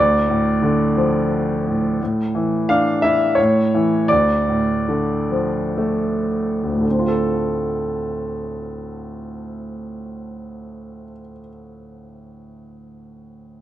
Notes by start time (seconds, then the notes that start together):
Already playing: D2 D5
0.28 A2
0.62 D3
0.96 F3
1.67 A2
2.01 A2
2.35 E3
2.69 D4 F5
3.02 E4 E5
3.35 A2 C#5
3.75 E3
4.08 D2 D5
4.48 A2
4.88 D3
5.31 F3
5.78 A3
6.63 D2
6.72 A2
6.81 D3
6.90 C4
6.99 F4
7.08 A4